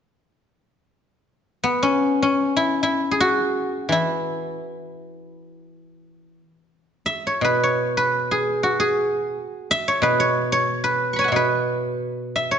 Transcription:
1.64 B3
1.83 C#4
2.22 C#4
2.57 E4
2.83 E4
3.11 G#4
3.20 F#4
3.89 E3 E4
7.06 E5
7.27 C#5
7.41 B2 B4
7.63 C#5
7.97 B4
8.31 G#4
8.63 F#4
8.80 G#4
9.71 E5
9.88 C#5
10.02 B2 B4
10.20 C#5
10.52 C#5
10.84 B4
11.13 B5 C#6
11.19 C#5 G#5
11.24 E5 F#5
11.32 B2 C#5
11.36 B4
12.36 E5
12.51 C#5

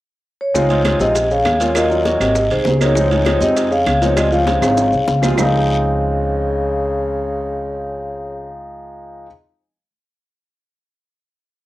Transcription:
0.41 C#5
0.54 C#2 G#3 C4 D#4 F4, high bongo, high conga, long guiro, maracas
0.69 G#3 C4 D#4 F4, high conga, high timbale, maracas
0.84 G#3 C4 D#4 F4, high bongo, high conga, high timbale, short guiro, claves, maracas
0.99 A#1 C3 D#5, high conga, short guiro, maracas
1.15 high bongo, high conga, high timbale, long guiro, maracas
1.30 C#3 F5, high conga, maracas
1.45 D#2, high bongo, low bongo, high conga, high timbale, short guiro, claves, maracas
1.60 A#2 G#3 C4 C#4 F4 C#5, high conga, high timbale, short guiro, maracas
1.75 A#2 F#3 A#3 C#4 F4 D#5, high bongo, high timbale, long guiro, claves, maracas
1.90 F#3 A#3 C#4 F4, high bongo, high conga, maracas
2.05 F#3 A#3 C#4 F#4, high bongo, high conga, high timbale, short guiro, maracas
2.20 G#1 C3 D#5, high bongo, high conga, high timbale, short guiro, claves, maracas
2.35 high bongo, high conga, long guiro, maracas
2.50 C2 G#2 C5, high bongo, high conga, high timbale, maracas
2.65 C#2, high bongo, low bongo, high conga, low timbale, short guiro, maracas
2.80 G#2 F#3 A#3 C4 D#4 C#5, high conga, high timbale, short guiro, claves, maracas
2.95 F3 G#3 C4 D#4, high bongo, long guiro, maracas
3.11 F3 G#3 C4 D#4, high conga, high timbale, maracas
3.25 F3 G#3 C4 D#4, high bongo, high conga, high timbale, short guiro, claves, maracas
3.41 F2 C3 D#5, high conga, short guiro, maracas
3.56 high bongo, high conga, high timbale, long guiro, maracas
3.71 C#3 F5, high conga, maracas
3.86 C#2, high bongo, low bongo, high conga, high timbale, short guiro, claves, maracas
4.01 A#2 F3 G#3 C4 D#4 C#5, high conga, high timbale, short guiro, maracas
4.13 A#2 C3 F3 G#3 D5, high bongo, high conga, long guiro
4.17 C4 F4 D#5, high timbale, claves, maracas
4.31 C#3 F3 G#3 C4 F4 F5, high bongo, high conga, maracas
4.46 F3 G#3 C4 D#4, high bongo, high conga, high timbale, short guiro, maracas
4.62 G#1 C#3 F5, high bongo, high conga, high timbale, short guiro, claves, maracas
4.77 low bongo, high conga, high timbale, long guiro, maracas
4.93 C2, high conga, maracas
5.07 C#2, low bongo, high conga, short guiro, maracas
5.22 F3 G#3 C4 F4, low bongo, high conga, low timbale, short guiro, claves, maracas
5.36 C#2 C#3 F3 G#3 C4 F5, low bongo, low conga, low timbale, long guiro, claves, maracas
5.40 D#4

